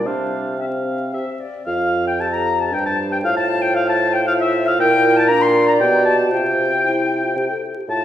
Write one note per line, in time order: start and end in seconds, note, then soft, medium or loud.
0.05 1.13 C3 medium
0.05 0.59 C4 medium
0.05 0.60 D4 medium
0.05 0.54 C5 medium
0.05 0.60 F5 medium
0.59 1.40 C4 medium
0.59 1.12 C4 medium
0.59 0.65 E5 medium
0.59 1.13 F5 medium
0.87 1.15 F5 medium
1.13 1.26 C3 medium
1.13 1.40 C4 medium
1.13 1.26 E5 medium
1.13 1.41 E5 medium
1.40 1.66 D5 medium
1.66 2.74 F2 medium
1.66 2.22 F4 medium
1.66 2.04 F5 medium
2.07 2.13 G5 medium
2.07 2.22 G5 medium
2.20 3.23 G4 medium
2.20 2.68 A4 medium
2.20 2.26 A5 medium
2.20 2.35 A5 medium
2.33 2.58 A#5 medium
2.33 2.59 A#5 medium
2.59 2.65 A5 medium
2.59 2.75 A5 medium
2.72 3.25 G2 medium
2.72 4.74 C5 medium
2.72 2.79 G5 medium
2.72 2.85 G5 loud
2.86 3.14 A5 medium
2.86 2.97 A5 loud
3.12 3.23 G5 medium
3.12 3.18 G5 medium
3.24 4.78 A2 medium
3.24 4.25 F4 medium
3.24 3.30 F5 medium
3.24 3.36 F5 loud
3.37 3.48 A5 loud
3.37 3.63 A5 loud
3.62 3.76 G5 medium
3.62 3.76 G5 loud
3.74 3.88 F5 loud
3.74 3.89 F5 loud
3.87 4.14 A5 medium
3.87 4.14 A5 loud
4.13 4.28 G5 loud
4.13 4.21 G5 medium
4.27 4.80 F4 medium
4.27 4.38 F5 loud
4.27 4.33 F5 loud
4.39 4.67 E5 medium
4.39 4.69 E5 loud
4.66 4.78 F5 medium
4.66 4.79 F5 loud
4.78 5.78 A#2 loud
4.78 5.30 E4 medium
4.78 5.30 A#4 loud
4.78 5.18 G5 loud
4.78 5.16 G5 loud
5.17 5.28 A5 loud
5.17 5.30 A5 loud
5.28 5.82 D4 medium
5.28 6.31 D5 loud
5.28 5.44 A#5 loud
5.28 5.43 A#5 loud
5.41 5.67 C6 loud
5.67 5.73 A#5 medium
5.67 5.74 A#5 loud
5.80 6.33 B2 medium
5.80 6.33 G4 medium
5.80 5.86 G5 medium
5.80 6.04 G5 loud
6.05 6.17 A5 loud
6.05 6.31 A5 medium
6.31 7.35 C3 medium
6.31 6.78 F4 medium
6.31 7.60 C5 medium
6.31 7.60 G5 loud
6.31 7.61 G5 medium
6.83 7.25 E4 medium
7.24 7.39 F4 medium
7.36 7.48 C3 medium
7.36 7.51 G4 medium
7.50 7.79 A4 medium
7.77 7.89 G4 medium
7.89 8.05 A2 medium
7.89 8.05 F4 medium
7.89 8.05 A5 medium
7.89 8.05 A5 loud